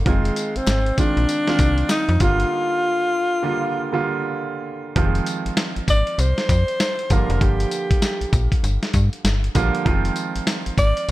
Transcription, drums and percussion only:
0.06 kick, closed hi-hat
0.25 closed hi-hat
0.36 closed hi-hat, tambourine
0.56 closed hi-hat
0.67 snare, clap, closed hi-hat, tambourine
0.86 closed hi-hat
0.98 kick, closed hi-hat, tambourine
1.17 closed hi-hat
1.29 closed hi-hat, tambourine
1.47 snare, closed hi-hat
1.59 kick, closed hi-hat, tambourine
1.78 closed hi-hat
1.89 snare, clap, closed hi-hat, tambourine
2.09 closed hi-hat
2.20 kick, closed hi-hat, tambourine
2.40 closed hi-hat
4.96 kick, closed hi-hat
5.15 closed hi-hat
5.26 closed hi-hat, tambourine
5.46 closed hi-hat
5.57 snare, closed hi-hat, tambourine
5.76 closed hi-hat
5.88 kick, closed hi-hat, tambourine
6.07 closed hi-hat
6.19 closed hi-hat, tambourine
6.38 snare, closed hi-hat
6.49 kick, closed hi-hat, tambourine
6.68 closed hi-hat
6.80 snare, closed hi-hat, tambourine
6.99 closed hi-hat
7.10 kick, closed hi-hat, tambourine
7.30 closed hi-hat
7.41 kick, closed hi-hat
7.60 closed hi-hat
7.71 closed hi-hat, tambourine
7.91 kick, closed hi-hat
8.02 snare, closed hi-hat, tambourine
8.21 closed hi-hat
8.33 kick, closed hi-hat, tambourine
8.52 kick, closed hi-hat
8.64 closed hi-hat, tambourine
8.83 snare, closed hi-hat
8.94 kick, closed hi-hat, tambourine
9.13 closed hi-hat
9.25 snare, closed hi-hat, tambourine
9.44 closed hi-hat
9.55 kick, closed hi-hat, tambourine
9.75 closed hi-hat
9.86 kick, closed hi-hat
10.05 closed hi-hat
10.16 closed hi-hat, tambourine
10.36 closed hi-hat
10.47 snare, closed hi-hat, tambourine
10.66 closed hi-hat
10.78 kick, closed hi-hat, tambourine
10.97 closed hi-hat

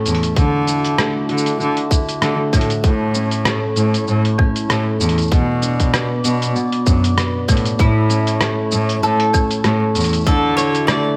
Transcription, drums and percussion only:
0.06 closed hi-hat, cabasa
0.15 closed hi-hat
0.23 closed hi-hat, cabasa
0.36 kick, closed hi-hat, cabasa
0.67 closed hi-hat, cabasa
0.85 closed hi-hat, cabasa
0.98 cross-stick, closed hi-hat, cabasa, claves
1.29 closed hi-hat
1.37 cabasa
1.46 closed hi-hat, cabasa
1.60 cabasa
1.77 closed hi-hat
1.91 kick, cabasa
2.09 closed hi-hat, cabasa
2.22 cross-stick, closed hi-hat, cabasa
2.53 kick, closed hi-hat, cabasa, claves
2.61 closed hi-hat
2.70 closed hi-hat, cabasa
2.84 kick, closed hi-hat, cabasa
3.14 cabasa
3.31 closed hi-hat, cabasa
3.45 cross-stick, closed hi-hat, cabasa
3.76 closed hi-hat, cabasa
3.94 closed hi-hat, cabasa
4.07 cabasa
4.25 closed hi-hat
4.38 kick, claves
4.56 closed hi-hat, cabasa
4.70 cross-stick, closed hi-hat, cabasa
5.00 cabasa
5.09 closed hi-hat
5.18 closed hi-hat, cabasa
5.21 cabasa
5.27 cabasa
5.32 kick, closed hi-hat, cabasa
5.62 closed hi-hat, cabasa
5.80 kick, closed hi-hat, cabasa
5.94 cross-stick, closed hi-hat, cabasa, claves
6.24 closed hi-hat, cabasa
6.42 closed hi-hat, cabasa
6.56 cabasa
6.72 closed hi-hat
6.86 kick, cabasa
7.04 closed hi-hat, cabasa
7.18 cross-stick, closed hi-hat, cabasa
7.48 kick, closed hi-hat, cabasa, claves
7.57 closed hi-hat
7.65 closed hi-hat, cabasa
7.79 kick, closed hi-hat, cabasa
8.10 closed hi-hat, cabasa
8.27 closed hi-hat, cabasa
8.41 cross-stick, closed hi-hat, cabasa
8.71 cabasa
8.89 closed hi-hat, cabasa
9.03 cabasa
9.20 closed hi-hat
9.34 kick, cabasa, claves
9.51 closed hi-hat, cabasa
9.64 cross-stick, closed hi-hat, cabasa
9.95 closed hi-hat, cabasa
10.00 cabasa
10.04 closed hi-hat, cabasa
10.08 cabasa
10.13 closed hi-hat, cabasa
10.17 cabasa
10.20 cabasa
10.24 kick, closed hi-hat, cabasa
10.27 cabasa
10.58 closed hi-hat, cabasa
10.75 closed hi-hat, cabasa
10.88 cross-stick, closed hi-hat, cabasa, claves

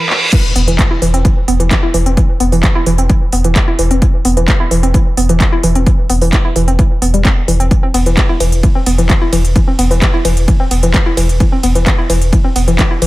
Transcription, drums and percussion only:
0.10 clap
0.33 kick, closed hi-hat, crash
0.56 open hi-hat
0.68 closed hi-hat
0.79 kick, clap, closed hi-hat
1.02 open hi-hat
1.14 closed hi-hat
1.25 kick, closed hi-hat
1.48 open hi-hat
1.60 closed hi-hat
1.71 kick, clap, closed hi-hat
1.94 open hi-hat
2.06 closed hi-hat
2.17 kick, closed hi-hat
2.40 open hi-hat
2.52 open hi-hat
2.63 kick, clap, closed hi-hat
2.86 open hi-hat
2.98 closed hi-hat
3.10 kick, closed hi-hat
3.32 open hi-hat
3.44 closed hi-hat
3.56 kick, clap, closed hi-hat
3.79 open hi-hat
3.91 closed hi-hat
4.02 kick, closed hi-hat
4.25 open hi-hat
4.37 closed hi-hat
4.48 kick, clap, closed hi-hat
4.71 open hi-hat
4.83 closed hi-hat
4.94 kick, closed hi-hat
5.17 open hi-hat
5.29 closed hi-hat
5.40 kick, clap, closed hi-hat
5.63 open hi-hat
5.75 closed hi-hat
5.87 kick, closed hi-hat
6.10 open hi-hat
6.21 open hi-hat
6.33 kick, clap, closed hi-hat
6.56 open hi-hat
6.68 closed hi-hat
6.79 kick, closed hi-hat
7.02 open hi-hat
7.14 closed hi-hat
7.25 kick, clap, closed hi-hat
7.48 open hi-hat
7.60 closed hi-hat
7.71 kick, closed hi-hat
7.94 open hi-hat, ride
8.06 closed hi-hat
8.17 kick, clap, closed hi-hat
8.40 open hi-hat, ride
8.52 closed hi-hat
8.63 kick, closed hi-hat
8.86 open hi-hat, ride
8.98 closed hi-hat
9.10 kick, clap, closed hi-hat
9.33 open hi-hat, ride
9.45 closed hi-hat
9.56 kick, closed hi-hat
9.79 open hi-hat, ride
9.91 open hi-hat
10.02 kick, clap, closed hi-hat
10.25 open hi-hat, ride
10.37 closed hi-hat
10.48 kick, closed hi-hat
10.71 open hi-hat, ride
10.83 closed hi-hat
10.94 kick, clap, closed hi-hat
11.17 open hi-hat, ride
11.29 closed hi-hat
11.40 kick, closed hi-hat
11.63 open hi-hat, ride
11.75 closed hi-hat
11.86 kick, clap, closed hi-hat
12.10 open hi-hat, ride
12.22 closed hi-hat
12.33 kick, closed hi-hat
12.56 open hi-hat, ride
12.68 closed hi-hat
12.79 kick, clap, closed hi-hat
13.02 open hi-hat, ride

